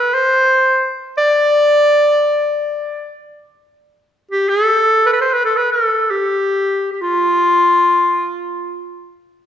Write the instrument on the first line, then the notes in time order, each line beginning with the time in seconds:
clarinet
Already playing: B4
0.14 C5
1.17 D5
4.31 G4
4.49 A4
5.06 A4 B4
5.13 B4
5.21 C5
5.33 B4
5.45 A4
5.57 B4
5.72 A4
6.10 G4
6.92 G4
7.01 F4